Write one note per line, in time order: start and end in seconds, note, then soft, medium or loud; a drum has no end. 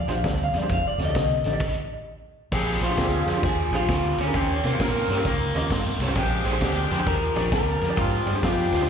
0.00 0.12 D5 medium
0.07 0.22 A#1 medium
0.07 0.23 A#2 medium
0.07 0.23 F3 medium
0.07 0.16 D4 medium
0.07 0.17 G4 medium
0.07 0.17 G#4 medium
0.07 0.17 C5 medium
0.07 snare soft
0.07 closed hi-hat medium
0.12 0.27 F5 medium
0.24 0.51 D2 medium
0.24 0.51 A#2 medium
0.24 0.51 G3 medium
0.24 0.41 D5 medium
0.24 kick medium
0.24 snare medium
0.24 closed hi-hat medium
0.44 0.58 F5 loud
0.53 0.68 F2 medium
0.53 0.69 A#2 medium
0.53 0.69 G3 medium
0.53 0.58 G#4 soft
0.53 0.59 C5 soft
0.53 snare soft
0.53 closed hi-hat medium
0.58 0.70 D4 medium
0.58 0.71 D5 medium
0.62 0.71 G4 medium
0.62 0.71 G#4 medium
0.62 0.71 C5 medium
0.69 0.96 F1 medium
0.69 0.96 F2 medium
0.69 0.97 C3 medium
0.69 kick medium
0.69 closed hi-hat medium
0.73 0.87 F5 medium
0.88 1.02 D5 medium
0.98 1.13 D2 medium
0.98 1.14 F2 medium
0.98 1.14 C3 medium
0.98 1.03 A4 soft
0.98 1.04 D5 soft
0.98 snare soft
0.98 closed hi-hat medium
1.05 1.16 D#4 medium
1.05 1.16 G4 soft
1.05 1.16 A4 soft
1.05 1.16 D5 medium
1.05 1.91 D#5 medium
1.15 1.41 C2 medium
1.15 1.42 F2 medium
1.15 1.43 D3 medium
1.15 kick medium
1.15 snare loud
1.15 closed hi-hat medium
1.44 1.59 A1 medium
1.44 1.60 F2 medium
1.44 1.60 D3 medium
1.44 1.49 A4 soft
1.44 1.50 D5 soft
1.44 snare soft
1.44 closed hi-hat medium
1.52 1.61 D#4 medium
1.52 1.61 G4 medium
1.52 1.61 A4 medium
1.52 1.61 D5 medium
1.60 kick loud
1.60 crash medium
2.52 2.78 A#1 medium
2.52 2.79 A#2 medium
2.52 2.79 F3 medium
2.52 2.85 C4 medium
2.52 2.85 D4 medium
2.52 2.85 G4 medium
2.52 2.86 G#4 medium
2.52 kick medium
2.52 snare soft
2.52 crash loud
2.81 2.96 A#1 medium
2.81 2.96 A#2 medium
2.81 2.97 F3 medium
2.81 3.43 F4 medium
2.81 2.86 G#4 soft
2.81 2.86 C5 soft
2.81 snare soft
2.81 ride medium
2.89 2.98 D4 medium
2.89 2.98 G4 medium
2.89 2.98 G#4 medium
2.89 2.99 C5 medium
2.97 3.24 D2 medium
2.97 3.24 A#2 medium
2.97 3.25 G3 medium
2.97 3.55 C4 medium
2.97 3.55 D4 medium
2.97 3.55 G4 medium
2.97 3.55 G#4 medium
2.97 kick medium
2.97 snare loud
2.97 ride medium
3.26 3.41 F2 medium
3.26 3.42 A#2 medium
3.26 3.43 G3 medium
3.26 3.31 G#4 soft
3.26 3.32 C5 soft
3.26 snare soft
3.26 ride medium
3.36 3.44 D4 medium
3.36 3.44 G4 medium
3.36 3.44 G#4 medium
3.36 3.44 C5 medium
3.43 3.69 D#2 medium
3.43 3.70 A#2 medium
3.43 3.71 F3 medium
3.43 3.73 G#4 medium
3.43 kick medium
3.43 snare soft
3.43 ride medium
3.71 3.86 A#1 medium
3.71 3.88 A#2 medium
3.71 3.88 F3 medium
3.71 3.81 D4 medium
3.71 3.81 G4 medium
3.71 3.82 G#4 medium
3.71 3.82 C5 medium
3.71 snare soft
3.71 ride medium
3.75 4.18 F4 medium
3.88 4.15 D2 medium
3.88 4.15 A#2 medium
3.88 4.16 G3 medium
3.88 kick medium
3.88 snare loud
3.88 ride medium
4.18 4.32 D2 medium
4.18 4.33 A#2 medium
4.18 4.33 G3 medium
4.18 4.64 C#4 medium
4.18 4.23 G#4 soft
4.18 4.24 C5 soft
4.18 snare soft
4.18 ride medium
4.26 4.34 D4 medium
4.26 4.34 G4 medium
4.26 4.35 G#4 medium
4.26 4.35 A#4 medium
4.33 4.60 D#2 medium
4.33 4.61 D#3 medium
4.33 4.61 A#3 medium
4.33 4.67 C4 medium
4.33 4.67 C#4 medium
4.33 4.67 F4 medium
4.33 4.67 G4 medium
4.33 kick medium
4.33 ride medium
4.63 4.78 C3 medium
4.63 4.78 D#3 medium
4.63 4.79 A#3 medium
4.63 5.24 A#3 medium
4.63 4.68 G4 soft
4.63 4.69 C5 soft
4.63 snare soft
4.63 ride medium
4.72 4.80 C#4 medium
4.72 4.81 F4 medium
4.72 4.81 G4 medium
4.72 4.81 C5 medium
4.79 5.06 A#2 medium
4.79 5.06 D#3 medium
4.79 5.07 C4 medium
4.79 5.37 C4 medium
4.79 5.38 C#4 medium
4.79 5.38 F4 medium
4.79 5.38 A#4 medium
4.79 kick medium
4.79 snare loud
4.79 ride medium
5.09 5.23 G2 medium
5.09 5.24 D#3 medium
5.09 5.24 C4 medium
5.09 5.14 G4 soft
5.09 5.14 C#5 soft
5.09 snare soft
5.09 ride medium
5.16 5.25 C#4 medium
5.16 5.25 F4 medium
5.16 5.25 G4 medium
5.16 5.25 A#4 medium
5.25 5.51 C#2 medium
5.25 5.52 D#3 medium
5.25 5.53 A#3 medium
5.25 6.59 A#3 medium
5.25 kick medium
5.25 ride medium
5.54 5.68 D#2 medium
5.54 5.69 D#3 medium
5.54 5.70 A#3 medium
5.54 5.63 C#4 medium
5.54 5.63 F4 medium
5.54 5.63 G4 medium
5.54 5.63 D#5 medium
5.54 snare soft
5.54 ride medium
5.70 5.97 G2 medium
5.70 5.98 D#3 medium
5.70 5.98 C4 medium
5.70 kick medium
5.70 snare loud
5.70 ride medium
5.99 6.13 C2 medium
5.99 6.15 D#3 medium
5.99 6.15 C4 medium
5.99 6.05 G4 soft
5.99 6.05 C#5 medium
5.99 snare soft
5.99 ride medium
6.07 6.16 C#4 medium
6.07 6.16 F4 medium
6.07 6.16 G4 medium
6.07 6.16 C5 medium
6.15 6.42 A#1 medium
6.15 6.43 A#2 medium
6.15 6.43 F3 loud
6.15 6.49 G#3 medium
6.15 6.49 C4 medium
6.15 6.49 D4 medium
6.15 6.49 G4 loud
6.15 kick medium
6.15 snare soft
6.15 ride medium
6.44 6.59 A#1 medium
6.44 6.60 A#2 medium
6.44 6.61 F3 medium
6.44 6.49 G#4 medium
6.44 6.50 C5 medium
6.44 snare soft
6.44 ride medium
6.51 6.60 D4 medium
6.51 6.61 G4 medium
6.51 6.61 G#4 medium
6.51 6.61 C5 medium
6.61 6.87 D2 medium
6.61 6.88 A#2 medium
6.61 6.89 G3 medium
6.61 7.19 G#3 medium
6.61 7.19 C4 medium
6.61 7.19 D4 medium
6.61 7.19 G4 loud
6.61 kick medium
6.61 snare loud
6.61 ride medium
6.90 7.05 F2 loud
6.90 7.05 A#2 medium
6.90 7.06 G3 medium
6.90 6.94 G#4 medium
6.90 6.95 C5 medium
6.90 snare soft
6.90 ride medium
6.97 7.06 D4 medium
6.97 7.07 G4 medium
6.97 7.07 G#4 medium
6.97 7.07 C5 medium
7.06 7.33 D#2 medium
7.06 7.33 A#2 medium
7.06 7.33 F3 medium
7.06 7.51 A#4 medium
7.06 kick medium
7.06 ride medium
7.35 7.51 A#1 medium
7.35 7.51 A#2 medium
7.35 7.51 F3 medium
7.35 7.44 D4 medium
7.35 7.44 G4 medium
7.35 7.44 G#4 medium
7.35 7.44 D5 medium
7.35 snare soft
7.35 ride medium
7.52 7.78 D2 medium
7.52 7.79 A#2 medium
7.52 7.79 G3 medium
7.52 7.96 A#4 medium
7.52 kick medium
7.52 snare loud
7.52 ride medium
7.81 7.96 F2 medium
7.81 7.97 A#2 medium
7.81 7.97 G3 medium
7.81 7.85 G#4 soft
7.81 7.86 A#4 soft
7.81 snare soft
7.81 ride medium
7.88 7.97 D4 medium
7.88 7.98 G4 medium
7.88 7.98 G#4 medium
7.88 7.98 D5 medium
7.96 8.24 G#2 medium
7.96 8.24 A#2 medium
7.96 8.24 F3 medium
7.96 8.30 G#3 medium
7.96 8.30 C4 medium
7.96 8.30 D4 medium
7.96 8.30 F4 medium
7.96 8.42 G4 medium
7.96 kick medium
7.96 ride medium
8.26 8.41 G2 medium
8.26 8.41 A#2 medium
8.26 8.42 F3 medium
8.26 8.31 G#4 soft
8.26 8.31 D5 medium
8.26 snare soft
8.26 ride medium
8.34 8.43 D4 medium
8.34 8.43 G4 medium
8.34 8.43 G#4 medium
8.34 8.43 C5 medium
8.42 8.69 F2 medium
8.42 8.70 A#2 medium
8.42 8.70 G3 medium
8.42 8.89 G#3 medium
8.42 8.89 C4 medium
8.42 8.89 D4 medium
8.42 8.89 F4 loud
8.42 8.89 G4 medium
8.42 kick medium
8.42 snare loud
8.42 ride medium
8.72 8.87 D2 medium
8.72 8.87 A#2 medium
8.72 8.87 G3 medium
8.72 8.77 G#4 soft
8.72 8.77 C5 soft
8.72 snare soft
8.72 ride medium
8.81 8.89 D4 medium
8.81 8.89 G4 medium
8.81 8.89 G#4 medium
8.81 8.89 C5 medium